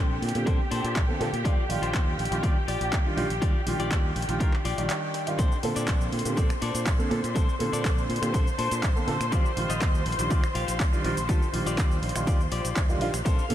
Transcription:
Already playing: A#1 D3 A#3 C4 D4 G4 A4 C5 G5
0.22 A#2, open hi-hat
0.29 closed hi-hat
0.35 A#2 D3 A#3 C4 G4, closed hi-hat
0.46 A#1 D3 A#3 C4 D4 A4 C5, kick, closed hi-hat
0.71 A#2 D4 A4 C5, open hi-hat
0.84 A#2, closed hi-hat
0.96 A#1, kick, clap, closed hi-hat
1.08 D3 A#3 C4 A4
1.20 A#2 D3 A#3 C4 A4, muted clean electric guitar stroke, open hi-hat
1.33 A#2, closed hi-hat
1.44 D#2 D#3 G3 D4 F4 G4 D5, kick, closed hi-hat
1.69 A#1 D#3 G3 D4 F4, open hi-hat
1.82 A#1 F4 G4 C5, closed hi-hat
1.94 D#2, kick, clap, closed hi-hat
2.18 A#1, open hi-hat
2.25 closed hi-hat
2.31 A#1 D#3 G3 D4 F4, closed hi-hat
2.43 D#2 D#3 G3 D4 F4 G4 D5, kick, closed hi-hat
2.68 A#1 F4 G4 D5, open hi-hat
2.81 A#1, closed hi-hat
2.93 D#2, kick, clap, closed hi-hat
3.05 D#3 G3 D4 F4
3.17 A#1 D#3 G3 D4 F4, muted clean electric guitar stroke, open hi-hat
3.30 A#1, closed hi-hat
3.42 D#2 D#3 G3 D4 F4 G4 D5, kick, closed hi-hat
3.66 A#1 D#3 G3 D4 F4, open hi-hat
3.79 A#1 F4 G4 D5, closed hi-hat
3.91 D#2, kick, clap, closed hi-hat
4.16 A#1, open hi-hat
4.22 closed hi-hat
4.28 A#1 D#3 G3 D4 F4, closed hi-hat
4.40 D#2 D4 F4 G4 A#4, kick, closed hi-hat
4.54 clap
4.65 A#1 F4 G4 D5, open hi-hat
4.78 A#1 D#3 G3 D4 G4, closed hi-hat
4.90 clap, closed hi-hat
5.14 muted clean electric guitar stroke, open hi-hat
5.27 D#3 G3 D4 F4, closed hi-hat
5.38 A#1 D3 A#3 C4 D4 A4 C5 C6, kick, closed hi-hat, cabasa
5.52 cabasa
5.63 A#2 D3 A#3 C4 A4, open hi-hat
5.76 A#2 D4 A4 D5, closed hi-hat, cabasa
5.88 A#1, kick, clap, closed hi-hat, cabasa
6.01 cabasa
6.12 A#2, open hi-hat
6.19 closed hi-hat
6.25 A#2 D3 A#3 C4 G4, closed hi-hat, cabasa
6.37 A#1 D3 A#3 C4 D4 A4 D5, kick, closed hi-hat, cabasa
6.50 finger snap, cabasa
6.62 A#2 D4 A4 D5, open hi-hat
6.75 A#2, closed hi-hat, cabasa
6.86 A#1, kick, clap, closed hi-hat, cabasa
6.99 D3 A#3 C4 A4, cabasa
7.10 A#2 D3 A#3 C4 A4, muted clean electric guitar stroke, open hi-hat
7.24 A#2, closed hi-hat, cabasa
7.35 A#1 D3 A#3 C4 D4 A4 C5, kick, closed hi-hat, cabasa
7.49 cabasa
7.59 A#2 D3 A#3 C4 A4, open hi-hat
7.72 A#2 D4 A4 D5, closed hi-hat, cabasa
7.85 A#1, kick, clap, closed hi-hat, cabasa
7.98 cabasa
8.09 A#2, open hi-hat
8.16 closed hi-hat
8.22 A#2 D3 A#3 C4 G4, finger snap, closed hi-hat, cabasa
8.34 A#1 D3 A#3 C4 D4 A4 C5, kick, closed hi-hat, cabasa
8.47 cabasa
8.58 A#2 D4 A4 C5, open hi-hat
8.71 A#2, closed hi-hat, cabasa
8.83 A#1, kick, clap, closed hi-hat, cabasa
8.96 D3 A#3 C4 A4, cabasa
9.07 A#2 D3 A#3 C4 A4, muted clean electric guitar stroke, open hi-hat
9.20 A#2, finger snap, closed hi-hat, cabasa
9.32 D#2 D#3 G3 D4 F4 G4 D5, kick, closed hi-hat, cabasa
9.46 cabasa
9.56 A#1 D#3 G3 F4, open hi-hat
9.69 A#1 F4 G4 D#5, closed hi-hat, cabasa
9.81 D#2, kick, clap, closed hi-hat, cabasa
9.95 cabasa
10.06 A#1, open hi-hat
10.12 closed hi-hat
10.19 A#1 D#3 G3 D4 F4, closed hi-hat, cabasa
10.30 D#3 G3 D4 F4 G4 D5, kick, closed hi-hat, cabasa
10.44 finger snap, cabasa
10.55 A#1 F4 G4 F5, open hi-hat
10.68 A#1, closed hi-hat, cabasa
10.80 D#2, kick, clap, closed hi-hat, cabasa
10.92 D#3 G3 D4 F4, cabasa
11.04 A#1 D#3 G3 D4 F4, muted clean electric guitar stroke, open hi-hat
11.17 A#1, closed hi-hat, cabasa
11.29 D#2 D#3 G3 D4 F4 G4 A4, kick, closed hi-hat, cabasa
11.42 cabasa
11.53 A#1 D#3 G3 D4 F4, open hi-hat
11.66 A#1 F4 G4 D5, closed hi-hat, cabasa
11.78 D#2, kick, clap, closed hi-hat, cabasa
11.91 cabasa
12.02 A#1, open hi-hat
12.09 closed hi-hat
12.15 A#1 D#3 G3 D4 F4, finger snap, closed hi-hat, cabasa
12.27 D#2 D#3 G3 D4 F4 G4 D5, kick, closed hi-hat, cabasa
12.40 cabasa
12.52 A#1 F4 G4 D5, open hi-hat
12.65 A#1, closed hi-hat, cabasa
12.76 kick, clap, closed hi-hat, cabasa
12.89 D#3 G3 D4 F4, cabasa
13.01 A#1 D#3 G3 D4 F4, muted clean electric guitar stroke, open hi-hat
13.14 A#1, finger snap, closed hi-hat, cabasa
13.25 D3 A#3 C4 D4 A4 C5 F5 F6, kick, closed hi-hat, cabasa
13.39 cabasa
13.49 A#2 D3 A#3 C4 A4, open hi-hat

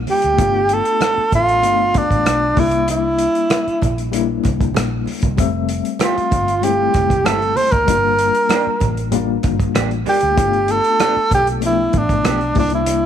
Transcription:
Already playing: G3 A#3 D4 F4
0.07 G4, open hi-hat, high conga
0.22 D2, closed hi-hat
0.37 G1 A3 B3 D4 F4, kick, closed hi-hat, muted conga
0.69 closed hi-hat
0.74 A4
0.85 closed hi-hat
1.01 cross-stick, closed hi-hat, high conga
1.17 muted fingered electric bass stroke
1.32 A1 F4, kick, closed hi-hat, muted conga
1.49 closed hi-hat
1.62 G1 A3 B3 D4 F4, closed hi-hat, muted conga
1.94 D4, kick, cross-stick, closed hi-hat, muted conga
2.11 A1, kick, closed hi-hat
2.25 B1, cross-stick, closed hi-hat, high conga
2.56 C2 G3 A#3 D4 E4, kick, open hi-hat, high conga
2.71 closed hi-hat
2.88 E4, closed hi-hat, muted conga
3.19 closed hi-hat
3.35 closed hi-hat
3.50 cross-stick, closed hi-hat, high conga
3.67 muted fingered electric bass stroke, closed hi-hat
3.82 A#1, kick, closed hi-hat, muted conga
3.98 closed hi-hat
4.12 G3 A#3 D4 E4, closed hi-hat, muted conga
4.44 C2, kick, cross-stick, closed hi-hat, muted conga
4.61 kick, closed hi-hat
4.74 A#1, cross-stick, closed hi-hat, high conga
5.06 open hi-hat, high conga
5.22 C2, kick, closed hi-hat
5.37 F1 G3 A3 C4 E5, kick, closed hi-hat, muted conga
5.69 closed hi-hat
5.85 closed hi-hat
5.99 E3 A3 C4 F4 G4, cross-stick, closed hi-hat, high conga
6.18 muted fingered electric bass stroke, closed hi-hat
6.31 G1, kick, closed hi-hat, muted conga
6.48 closed hi-hat
6.62 G3 G#3 C4 E4 G4, closed hi-hat, muted conga
6.69 A3
6.94 F1, kick, cross-stick, closed hi-hat, muted conga
7.10 kick, closed hi-hat
7.25 G1 E3 A3 C4 G4 A4, cross-stick, closed hi-hat, high conga
7.42 closed hi-hat
7.56 C5, open hi-hat, high conga
7.72 D2 A#4, kick, closed hi-hat
7.86 G1 G3 A#3 D4 F4, kick, closed hi-hat, muted conga
8.19 closed hi-hat
8.35 closed hi-hat
8.49 G3 A#3 D4 G4, cross-stick, closed hi-hat, high conga
8.67 muted fingered electric bass stroke
8.80 A1, kick, closed hi-hat, muted conga
8.97 closed hi-hat
9.12 G3 A#3 D4 F4, closed hi-hat, low conga
9.43 G1, kick, cross-stick, closed hi-hat, muted conga
9.60 kick, closed hi-hat
9.75 A1 G3 A#3 D4 G4, cross-stick, closed hi-hat, high conga
9.91 closed hi-hat
10.06 G3 A#3 D4 G4, open hi-hat, high conga
10.21 D2, closed hi-hat
10.36 G1 A3 B3 D4 E4, kick, closed hi-hat, muted conga
10.46 F4
10.53 closed hi-hat
10.68 A4, closed hi-hat
10.84 closed hi-hat
11.00 F3 B3 D4 G4, cross-stick, closed hi-hat, high conga
11.16 muted fingered electric bass stroke
11.31 B1 G4, kick, closed hi-hat, muted conga
11.47 closed hi-hat
11.60 F3 A3 B3 D4, closed hi-hat, muted conga
11.67 E4
11.93 A1, kick, closed hi-hat, muted conga
11.97 D4
12.09 kick, closed hi-hat
12.24 B1 F3 B3 D4 G4, cross-stick, closed hi-hat, high conga
12.41 closed hi-hat
12.55 C2 G3 A#3 D4 E4, kick, open hi-hat, high conga
12.60 D4
12.70 closed hi-hat
12.75 E4
12.86 closed hi-hat, muted conga

